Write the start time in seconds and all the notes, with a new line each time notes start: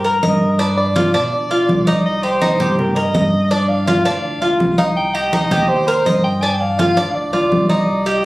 Already playing: G2
0.04 A#4, high conga
0.23 G2 D#5, high conga
0.41 high conga
0.59 D4 B4, high conga
0.77 D5, high conga
0.96 F4, high conga
1.14 B2 D4 D5, high conga
1.32 high conga
1.51 F4, high conga
1.69 C2, high conga
1.87 D#4 D5, high conga
2.05 D#5, high conga
2.23 G4 C5, high conga
2.42 D#4, high conga
2.60 G2 G4, high conga, low conga
2.79 A#4, high conga, low conga
2.96 A#4 D#5, high conga
3.14 G2 D#5, high conga
3.33 high conga
3.50 D4 D5, high conga
3.69 F5, high conga
3.87 F4, high conga
4.05 D2 D4 F5, high conga
4.24 high conga
4.42 D2 F4, high conga
4.60 C2, high conga
4.78 D#4 F5, high conga
4.97 G5, high conga
5.15 G4 D#5, high conga
5.33 D#4, high conga
5.51 D#2 G4, high conga, low conga
5.68 C5, high conga
5.87 A#4 C5, high conga
6.05 G2 D#5, high conga
6.24 G5, high conga
6.42 D4 G#5, high conga
6.54 G5
6.60 F5, high conga
6.79 F4, high conga
6.97 D2 D4, high conga
7.15 D5, high conga
7.33 D2 F4 D5, high conga
7.51 C2, high conga
7.69 D#4 D5, high conga
7.88 high conga
8.06 G4 D#5, high conga